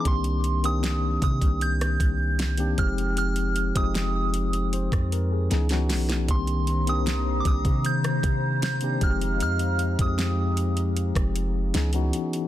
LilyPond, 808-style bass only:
\new Staff \with { instrumentName = "808-style bass" } { \clef bass \time 4/4 \key c \minor \tempo 4 = 77 c,4. c16 c,8. c,4 f,,8~ | f,,8. f,,4. f,8. des,8 ces,8 | c,4. c,16 c8. c4 f,,8 | f,8. f,4. f,,8. des,8 r8 | }